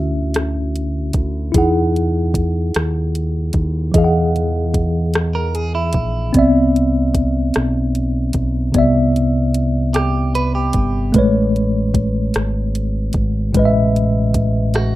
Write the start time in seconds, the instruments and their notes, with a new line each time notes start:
Already playing: fingered electric bass D2, tine electric piano D3 C#4 E4 F#4 E5
0.34 cross-stick, closed hi-hat
0.76 closed hi-hat
1.13 fingered electric bass D2, kick, closed hi-hat
1.52 fingered electric bass E2, tine electric piano D#4 E4 G#4, kick, closed hi-hat
1.58 tine electric piano F#5
1.96 closed hi-hat
2.34 kick, closed hi-hat
2.74 fingered electric bass D#2, cross-stick, closed hi-hat
3.15 closed hi-hat
3.53 fingered electric bass D#2, kick, closed hi-hat
3.92 fingered electric bass E2, tine electric piano E3 D#5, kick, closed hi-hat
3.96 tine electric piano G#4 F5
4.04 tine electric piano F#5
4.36 closed hi-hat
4.74 kick, closed hi-hat
5.14 cross-stick, closed hi-hat
5.35 clean electric guitar A#4
5.55 clean electric guitar G#4, closed hi-hat
5.75 clean electric guitar E4
5.93 fingered electric bass A#1, kick, closed hi-hat
6.33 fingered electric bass C2, tine electric piano B3 C4, kick, closed hi-hat
6.37 tine electric piano D5 E5
6.76 closed hi-hat
7.14 kick, closed hi-hat
7.54 fingered electric bass B1, cross-stick, closed hi-hat
7.95 closed hi-hat
8.33 fingered electric bass B1, kick, closed hi-hat
8.72 fingered electric bass C2, tine electric piano C3 B3, kick, closed hi-hat
8.76 tine electric piano D5 E5
9.16 closed hi-hat
9.54 closed hi-hat
9.94 clean electric guitar G4, cross-stick, closed hi-hat
10.35 clean electric guitar B4, closed hi-hat
10.55 clean electric guitar G4
10.73 fingered electric bass G1, kick, closed hi-hat
11.12 fingered electric bass A1, tine electric piano G#3 A3 B4, kick, closed hi-hat
11.19 tine electric piano C#5
11.56 closed hi-hat
11.94 kick, closed hi-hat
12.34 fingered electric bass G#1, cross-stick, closed hi-hat
12.75 closed hi-hat
13.13 fingered electric bass G#1, kick, closed hi-hat
13.53 fingered electric bass A1, tine electric piano A2 G#3, kick, closed hi-hat
13.57 tine electric piano B4 D#5
13.65 tine electric piano E5
13.96 closed hi-hat
14.34 kick, closed hi-hat
14.74 clean electric guitar F#4, cross-stick, closed hi-hat